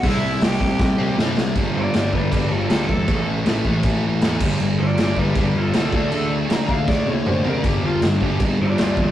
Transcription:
<<
  \new Staff \with { instrumentName = "Overdriven electric guitar" } { \time 4/4 \key d \mixolydian \tempo 4 = 158 <e' e''>4 <g' g''>2 r4 | r8 <f' d''>8 <f' d''>8 <d' b'>8 <d' b'>8 <f' a'>8 <f' a'>8 a'8~ | a'8 r2. r8 | r8 <f' d''>8 <f' d''>8 <d' b'>8 <d' b'>8 <f' a'>8 <f' a'>8 a'8~ |
a'8 r8 bes''8 f''8 d''8 cis''8 c''8 bes'8 | g'8 f'8 d'8 g'8 r8 <f' d''>8 <f' d''>8 <f' d''>8 | }
  \new Staff \with { instrumentName = "Distorted electric guitar" } { \clef bass \time 4/4 \key d \mixolydian <c g c'>2~ <c g c'>8 <c g c'>8 <c g c'>4 | <g, d g>4 <g, d g>8 <g, d g>8 <g, d g>4 <g, d g>8 <g, d g>8 | <a, e a>4 <a, e a>8 <a, e a>8 <a, e a>4 <a, e a>8 <g, d g>8 | <g, d g>4 <g, d g>8 <g, d g>8 <g, d g>4 <g, d g>8 <d a d'>8 |
<d a d'>4 <d a d'>8 <d a d'>8 <d a d'>4 <d a d'>8 <d a d'>8 | <g, d g>4 <g, d g>8 <g, d g>8 <g, d g>4 <g, d g>8 <g, d g>8 | }
  \new Staff \with { instrumentName = "Picked electric bass" } { \clef bass \time 4/4 \key d \mixolydian c,8 c,8 c,8 c,8 c,8 c,8 g,8 c,8 | g,,8 g,,8 g,,8 g,,8 g,,8 g,,8 d,8 e,8 | a,,8 a,,8 a,,8 a,,8 a,,8 a,,8 e,8 g,,8 | g,,8 g,,8 g,,8 g,,8 g,,8 g,,8 c,8 d,8 |
d,8 d,8 d,8 d,8 d,8 d,8 a,8 c8 | g,,8 g,,8 g,,8 g,,8 g,,8 g,,8 d,8 e,8 | }
  \new DrumStaff \with { instrumentName = "Drums" } \drummode { \time 4/4 <hho bd>4 <hho sn>8 bd8 <bd sn>4 sn8 sn8 | <cymc bd>4 <cymc sn>8 bd8 <cymc bd>4 <cymc sn>8 bd8 | <cymc bd>4 <cymc sn>8 bd8 <cymc bd>4 <cymc sn>8 <cymc bd>8 | cymc4 <cymc sn>8 bd8 <cymc bd>4 <cymc sn>8 bd8 |
cymc4 <cymc sn>8 bd8 <bd sn>8 tommh8 toml8 tomfh8 | <cymc bd>4 <cymc sn>8 bd8 <cymc bd>4 <cymc sn>8 bd8 | }
>>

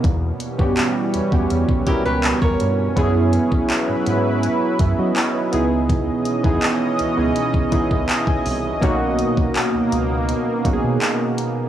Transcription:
<<
  \new Staff \with { instrumentName = "Nylon-string guitar" } { \time 4/4 \key b \major \tempo 4 = 82 r2 r8 <e' g'>16 <g' b'>8 <ais' cis''>8. | r1 | r1 | r1 | }
  \new Staff \with { instrumentName = "Synth keys" } { \time 4/4 \key b \major << { r1 | r2 r8 <gis' e''>16 <fis' dis''>16 <e' cis''>16 <dis' b'>8 r16 | r2. e''16 gis''8. | r1 | } \\ { r8. <b cis' fis' g'>8. r16 <b cis' fis' g'>8 r16 <b cis' fis' ais'>4 r8 | <b cis' e' gis'>4. r2 <b dis' e' gis'>8~ | <b dis' e' gis'>8 r16 <b dis' e' gis'>8. r16 <b dis' e' gis'>8 r16 <b dis' e' gis'>4 r8 | <ais cis' dis' fis'>4. r4 <ais cis' dis' fis' gis'>4. | } >> }
  \new Staff \with { instrumentName = "Analog synth pad" } { \clef bass \time 4/4 \key b \major << { cis'1 | e'2.~ e'8 dis''8~ | dis''1~ | dis''1 | } \\ { <b, e g>1 | <fis b'>2.~ <fis b'>8 <b, e cis'>8~ | <b, e cis'>1 | ais1 | } >> }
  \new Staff \with { instrumentName = "Analog synth bass" } { \clef bass \time 4/4 \key b \major e,8 r16 g,16 r8 e,16 e,16 e,16 b,,16 r16 cis,8 e,16 g,8 | fis,8. r8 gis,16 gis,8. r16 fis,16 fis16 r8 cis,8~ | cis,8 r16 e,16 r8 cis,16 cis,16 r8 cis,16 cis,16 r8 c,8 | b,,8. r8 cis,16 cis,8. r16 b,,16 b,16 r4 | }
  \new DrumStaff \with { instrumentName = "Drums" } \drummode { \time 4/4 <hh bd>8 hh16 bd16 <hc hh>8 hh16 bd16 hh16 bd16 <hh bd>8 <hc hh>16 bd16 hh8 | <hh bd>8 hh16 bd16 <hc hh>8 hh8 hh8 <hh bd>8 <hc hh>8 hh8 | <hh bd>8 hh16 bd16 <hc hh>8 hh8 hh16 bd16 <hh bd>16 bd16 <hc hh>16 bd16 hho8 | <hh bd>8 hh16 bd16 <hc hh>8 hh8 hh8 <hh bd>8 <hc hh>8 hh8 | }
>>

